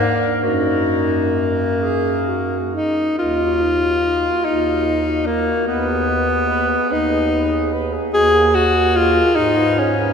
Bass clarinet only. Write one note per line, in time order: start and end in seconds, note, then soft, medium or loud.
0.00 0.26 G#2 loud
0.43 2.81 F#2 medium
3.18 4.29 D#2 medium
4.44 5.53 D#2 medium
5.67 6.76 D#2 medium
6.90 7.98 D#2 medium
8.12 9.21 D#2 loud
9.36 10.13 G#2 medium